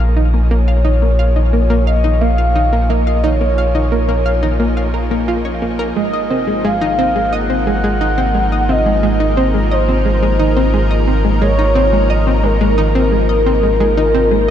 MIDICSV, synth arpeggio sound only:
0, 0, Header, 1, 2, 480
1, 0, Start_track
1, 0, Tempo, 681818
1, 356, Time_signature, 4, 2, 24, 8
1, 10212, End_track
2, 0, Start_track
2, 0, Title_t, "Synth arpeggio sound"
2, 0, Program_c, 0, 84
2, 116, Note_on_c, 0, 63, 75
2, 171, Note_off_c, 0, 63, 0
2, 238, Note_on_c, 0, 58, 69
2, 292, Note_off_c, 0, 58, 0
2, 359, Note_on_c, 0, 58, 97
2, 391, Note_off_c, 0, 58, 0
2, 477, Note_on_c, 0, 77, 75
2, 532, Note_off_c, 0, 77, 0
2, 596, Note_on_c, 0, 63, 97
2, 679, Note_off_c, 0, 63, 0
2, 718, Note_on_c, 0, 58, 69
2, 750, Note_off_c, 0, 58, 0
2, 838, Note_on_c, 0, 77, 75
2, 870, Note_off_c, 0, 77, 0
2, 957, Note_on_c, 0, 63, 73
2, 1012, Note_off_c, 0, 63, 0
2, 1078, Note_on_c, 0, 58, 71
2, 1132, Note_off_c, 0, 58, 0
2, 1197, Note_on_c, 0, 58, 97
2, 1230, Note_off_c, 0, 58, 0
2, 1317, Note_on_c, 0, 77, 78
2, 1372, Note_off_c, 0, 77, 0
2, 1437, Note_on_c, 0, 63, 90
2, 1519, Note_off_c, 0, 63, 0
2, 1558, Note_on_c, 0, 58, 72
2, 1590, Note_off_c, 0, 58, 0
2, 1677, Note_on_c, 0, 77, 70
2, 1710, Note_off_c, 0, 77, 0
2, 1799, Note_on_c, 0, 63, 81
2, 1853, Note_off_c, 0, 63, 0
2, 1920, Note_on_c, 0, 58, 72
2, 1974, Note_off_c, 0, 58, 0
2, 2041, Note_on_c, 0, 58, 100
2, 2072, Note_off_c, 0, 58, 0
2, 2161, Note_on_c, 0, 77, 73
2, 2214, Note_off_c, 0, 77, 0
2, 2279, Note_on_c, 0, 63, 93
2, 2360, Note_off_c, 0, 63, 0
2, 2399, Note_on_c, 0, 58, 74
2, 2431, Note_off_c, 0, 58, 0
2, 2520, Note_on_c, 0, 77, 74
2, 2551, Note_off_c, 0, 77, 0
2, 2639, Note_on_c, 0, 63, 72
2, 2693, Note_off_c, 0, 63, 0
2, 2759, Note_on_c, 0, 58, 79
2, 2813, Note_off_c, 0, 58, 0
2, 2877, Note_on_c, 0, 58, 97
2, 2910, Note_off_c, 0, 58, 0
2, 2997, Note_on_c, 0, 77, 70
2, 3052, Note_off_c, 0, 77, 0
2, 3117, Note_on_c, 0, 63, 98
2, 3199, Note_off_c, 0, 63, 0
2, 3236, Note_on_c, 0, 58, 77
2, 3269, Note_off_c, 0, 58, 0
2, 3357, Note_on_c, 0, 77, 69
2, 3390, Note_off_c, 0, 77, 0
2, 3477, Note_on_c, 0, 70, 71
2, 3532, Note_off_c, 0, 70, 0
2, 3598, Note_on_c, 0, 58, 95
2, 3680, Note_off_c, 0, 58, 0
2, 3717, Note_on_c, 0, 65, 78
2, 3750, Note_off_c, 0, 65, 0
2, 3836, Note_on_c, 0, 73, 71
2, 3892, Note_off_c, 0, 73, 0
2, 3957, Note_on_c, 0, 58, 72
2, 3990, Note_off_c, 0, 58, 0
2, 4077, Note_on_c, 0, 70, 97
2, 4132, Note_off_c, 0, 70, 0
2, 4199, Note_on_c, 0, 56, 76
2, 4231, Note_off_c, 0, 56, 0
2, 4319, Note_on_c, 0, 75, 75
2, 4351, Note_off_c, 0, 75, 0
2, 4438, Note_on_c, 0, 60, 73
2, 4493, Note_off_c, 0, 60, 0
2, 4558, Note_on_c, 0, 56, 68
2, 4612, Note_off_c, 0, 56, 0
2, 4678, Note_on_c, 0, 56, 98
2, 4710, Note_off_c, 0, 56, 0
2, 4797, Note_on_c, 0, 63, 95
2, 4830, Note_off_c, 0, 63, 0
2, 4918, Note_on_c, 0, 60, 98
2, 5000, Note_off_c, 0, 60, 0
2, 5039, Note_on_c, 0, 56, 75
2, 5070, Note_off_c, 0, 56, 0
2, 5157, Note_on_c, 0, 75, 80
2, 5190, Note_off_c, 0, 75, 0
2, 5278, Note_on_c, 0, 60, 72
2, 5332, Note_off_c, 0, 60, 0
2, 5398, Note_on_c, 0, 56, 70
2, 5452, Note_off_c, 0, 56, 0
2, 5517, Note_on_c, 0, 56, 99
2, 5550, Note_off_c, 0, 56, 0
2, 5638, Note_on_c, 0, 63, 98
2, 5670, Note_off_c, 0, 63, 0
2, 5757, Note_on_c, 0, 60, 98
2, 5840, Note_off_c, 0, 60, 0
2, 5877, Note_on_c, 0, 56, 71
2, 5910, Note_off_c, 0, 56, 0
2, 5999, Note_on_c, 0, 75, 74
2, 6031, Note_off_c, 0, 75, 0
2, 6118, Note_on_c, 0, 60, 76
2, 6172, Note_off_c, 0, 60, 0
2, 6238, Note_on_c, 0, 56, 73
2, 6292, Note_off_c, 0, 56, 0
2, 6357, Note_on_c, 0, 56, 95
2, 6390, Note_off_c, 0, 56, 0
2, 6478, Note_on_c, 0, 63, 94
2, 6510, Note_off_c, 0, 63, 0
2, 6597, Note_on_c, 0, 60, 95
2, 6680, Note_off_c, 0, 60, 0
2, 6719, Note_on_c, 0, 56, 74
2, 6751, Note_off_c, 0, 56, 0
2, 6839, Note_on_c, 0, 75, 74
2, 6871, Note_off_c, 0, 75, 0
2, 6960, Note_on_c, 0, 60, 74
2, 7013, Note_off_c, 0, 60, 0
2, 7078, Note_on_c, 0, 56, 79
2, 7133, Note_off_c, 0, 56, 0
2, 7199, Note_on_c, 0, 56, 97
2, 7231, Note_off_c, 0, 56, 0
2, 7318, Note_on_c, 0, 63, 98
2, 7350, Note_off_c, 0, 63, 0
2, 7438, Note_on_c, 0, 60, 98
2, 7520, Note_off_c, 0, 60, 0
2, 7559, Note_on_c, 0, 56, 79
2, 7591, Note_off_c, 0, 56, 0
2, 7678, Note_on_c, 0, 75, 74
2, 7710, Note_off_c, 0, 75, 0
2, 7797, Note_on_c, 0, 60, 74
2, 7852, Note_off_c, 0, 60, 0
2, 7917, Note_on_c, 0, 56, 74
2, 7972, Note_off_c, 0, 56, 0
2, 8036, Note_on_c, 0, 56, 98
2, 8069, Note_off_c, 0, 56, 0
2, 8157, Note_on_c, 0, 63, 98
2, 8190, Note_off_c, 0, 63, 0
2, 8274, Note_on_c, 0, 60, 97
2, 8358, Note_off_c, 0, 60, 0
2, 8397, Note_on_c, 0, 56, 69
2, 8430, Note_off_c, 0, 56, 0
2, 8518, Note_on_c, 0, 75, 81
2, 8550, Note_off_c, 0, 75, 0
2, 8637, Note_on_c, 0, 60, 70
2, 8692, Note_off_c, 0, 60, 0
2, 8756, Note_on_c, 0, 56, 69
2, 8811, Note_off_c, 0, 56, 0
2, 8876, Note_on_c, 0, 56, 99
2, 8909, Note_off_c, 0, 56, 0
2, 8996, Note_on_c, 0, 63, 99
2, 9029, Note_off_c, 0, 63, 0
2, 9118, Note_on_c, 0, 60, 91
2, 9200, Note_off_c, 0, 60, 0
2, 9236, Note_on_c, 0, 56, 71
2, 9269, Note_off_c, 0, 56, 0
2, 9357, Note_on_c, 0, 75, 75
2, 9390, Note_off_c, 0, 75, 0
2, 9478, Note_on_c, 0, 60, 83
2, 9533, Note_off_c, 0, 60, 0
2, 9598, Note_on_c, 0, 56, 75
2, 9652, Note_off_c, 0, 56, 0
2, 9718, Note_on_c, 0, 56, 98
2, 9750, Note_off_c, 0, 56, 0
2, 9838, Note_on_c, 0, 63, 99
2, 9870, Note_off_c, 0, 63, 0
2, 9958, Note_on_c, 0, 60, 99
2, 10040, Note_off_c, 0, 60, 0
2, 10077, Note_on_c, 0, 56, 77
2, 10110, Note_off_c, 0, 56, 0
2, 10212, End_track
0, 0, End_of_file